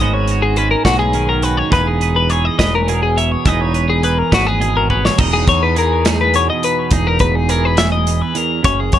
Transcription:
0.00 0.75 G#1 medium
0.00 1.69 G#2 medium
0.00 0.57 G#3 medium
0.00 1.71 B3 medium
0.00 0.57 C#4 soft
0.00 0.31 F#4 medium
0.00 0.14 D#5 medium
0.14 0.42 C#5 medium
0.28 0.85 F#4 soft
0.28 closed hi-hat soft
0.42 0.57 G#4 medium
0.56 1.70 G#3 medium
0.56 1.13 C#4 soft
0.56 0.71 B4 medium
0.56 closed hi-hat soft
0.71 0.84 A#4 medium
0.85 1.61 B1 medium
0.85 0.99 F#4 medium
0.85 kick medium
0.85 snare medium
0.85 closed hi-hat medium
0.99 1.28 G#4 medium
0.99 1.43 G#4 soft
1.13 1.69 D#3 medium
1.13 1.72 C#4 soft
1.13 closed hi-hat soft
1.29 1.43 A#4 medium
1.43 1.72 F#4 soft
1.43 1.57 B4 medium
1.43 closed hi-hat medium
1.57 1.72 C#5 medium
1.70 2.48 E1 medium
1.70 3.46 E2 medium
1.70 2.29 E3 medium
1.70 3.47 D#4 medium
1.70 2.30 G#4 medium
1.70 1.87 B4 medium
1.70 2.02 B4 medium
1.70 kick loud
1.70 closed hi-hat medium
1.87 2.16 G#4 medium
2.01 2.59 B4 medium
2.01 closed hi-hat soft
2.16 2.30 B4 medium
2.30 3.46 E3 medium
2.30 2.89 G#4 soft
2.30 2.45 C#5 medium
2.30 closed hi-hat soft
2.45 2.58 D#5 medium
2.59 3.35 E1 medium
2.59 3.17 B4 medium
2.59 2.73 D#5 medium
2.59 kick medium
2.59 snare medium
2.59 closed hi-hat medium
2.75 3.02 A#4 medium
2.88 3.46 B2 medium
2.88 3.48 G#4 medium
2.88 closed hi-hat medium
3.03 3.17 G#4 medium
3.17 3.42 C#5 medium
3.17 3.32 E5 medium
3.17 closed hi-hat medium
3.32 3.47 C#5 medium
3.45 4.21 E1 medium
3.45 5.17 E2 medium
3.45 4.01 E3 medium
3.45 5.16 D#4 medium
3.45 4.02 G#4 soft
3.45 3.73 B4 medium
3.45 3.61 D#5 medium
3.45 kick medium
3.45 closed hi-hat medium
3.61 3.89 C#5 medium
3.74 4.31 B4 soft
3.74 closed hi-hat medium
3.90 4.04 G#4 medium
4.03 5.74 E3 soft
4.03 4.60 G#4 soft
4.03 4.19 B4 medium
4.03 closed hi-hat medium
4.19 4.33 A#4 medium
4.32 5.08 G#1 medium
4.32 4.47 F#4 medium
4.32 4.89 B4 soft
4.32 kick medium
4.32 snare medium
4.32 closed hi-hat medium
4.47 4.76 G#4 medium
4.60 5.18 B2 medium
4.60 5.15 G#4 medium
4.60 closed hi-hat soft
4.77 4.90 A#4 medium
4.90 5.05 B4 medium
4.90 5.15 C#5 soft
4.90 kick soft
5.05 5.19 C#5 medium
5.05 snare medium
5.18 5.44 E1 medium
5.18 6.91 E2 medium
5.18 6.06 D#4 medium
5.18 5.33 D#5 medium
5.18 kick loud
5.18 crash loud
5.33 5.48 G#4 medium
5.47 6.49 E2 medium
5.47 5.63 C#5 medium
5.47 kick medium
5.47 closed hi-hat medium
5.63 5.77 B4 medium
5.75 7.49 E3 medium
5.75 7.49 G#4 medium
5.75 6.08 A#4 medium
5.75 closed hi-hat medium
6.05 6.89 D#4 medium
6.05 6.21 G#4 medium
6.05 snare loud
6.05 closed hi-hat medium
6.21 6.35 B4 medium
6.34 6.92 B2 medium
6.34 6.49 C#5 medium
6.34 closed hi-hat medium
6.50 6.64 D#5 medium
6.63 6.93 B4 medium
6.63 closed hi-hat medium
6.91 7.17 E1 medium
6.91 8.34 E2 medium
6.91 8.62 D#4 medium
6.91 7.07 G#4 medium
6.91 kick loud
6.91 closed hi-hat medium
7.07 7.20 A#4 medium
7.19 8.21 E1 medium
7.19 7.35 B4 medium
7.19 kick medium
7.19 closed hi-hat medium
7.35 7.50 G#4 medium
7.49 8.99 E3 medium
7.49 8.66 G#4 medium
7.49 7.65 A#4 medium
7.49 closed hi-hat medium
7.65 7.79 B4 medium
7.77 7.92 E5 medium
7.77 snare loud
7.77 closed hi-hat medium
7.92 8.22 D#5 medium
8.07 closed hi-hat medium
8.22 8.37 B4 medium
8.35 8.63 E2 medium
8.35 8.65 A#4 medium
8.35 closed hi-hat medium
8.63 8.90 F#1 medium
8.63 8.99 F#2 medium
8.63 8.99 C#4 medium
8.63 8.79 C#5 medium
8.63 kick loud
8.63 closed hi-hat medium
8.80 8.94 G#4 medium
8.92 8.99 F#2 medium
8.92 8.99 C#5 medium
8.92 kick medium
8.92 closed hi-hat medium

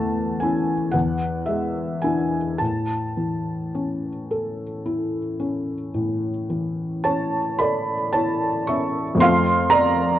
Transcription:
0.00 0.90 E2 soft
0.00 0.73 A3 soft
0.00 0.41 A5 medium
0.40 0.90 C#4 soft
0.40 0.90 E4 soft
0.40 0.92 G#5 medium
0.92 2.56 E2 medium
0.92 1.46 F#5 medium
1.46 2.38 G#3 soft
1.46 2.02 E5 medium
2.02 2.57 D4 soft
2.02 2.57 E4 soft
2.02 2.59 G#5 medium
2.58 5.91 A2 soft
2.58 7.02 A5 medium
3.17 4.08 E3 soft
3.75 4.63 C#4 soft
4.31 5.18 A4 soft
4.86 5.72 E4 soft
5.40 6.28 C#4 soft
5.94 9.18 A2 soft
6.50 7.39 E3 soft
7.04 7.92 C#4 soft
7.04 7.56 C#5 medium
7.04 7.59 A5 medium
7.58 8.47 A4 soft
7.58 8.10 D5 medium
7.58 8.13 B5 medium
8.13 9.02 E4 soft
8.13 8.65 C#5 soft
8.13 8.68 A5 medium
8.67 9.22 C#4 soft
8.67 9.18 E5 medium
8.67 9.21 C#6 medium
9.15 10.19 F2 medium
9.15 10.19 A3 medium
9.19 10.19 C4 soft
9.19 10.19 F4 medium
9.19 9.68 F5 medium
9.19 9.71 C6 loud
9.70 10.17 D5 medium
9.70 10.19 A#5 loud

